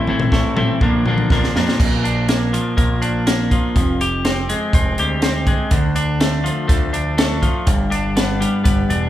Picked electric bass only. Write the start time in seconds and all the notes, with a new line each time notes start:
0.08 A1
0.32 A1
0.81 A#1
1.30 A#1
1.56 F2
1.80 A#1
2.77 A#1
3.75 F1
4.74 F1
4.99 D2
5.72 D2
6.69 D2
7.67 G1
8.65 G1
8.89 E1